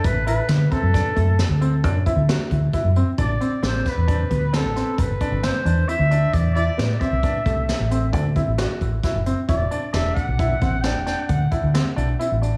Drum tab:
HH |xxxxxxxxxxxxxx|xxxxxxxxxxxxxx|xxxxxxxxxxxxxx|xxxxxxxxxxxxxx|
SD |--o-o-o---o---|--oo--oo--o---|--o---o---o-o-|--o---oo--o---|
BD |o--ooo--oo-oo-|o--ooo--oo----|o--ooo--oo-oo-|o--ooo--oo----|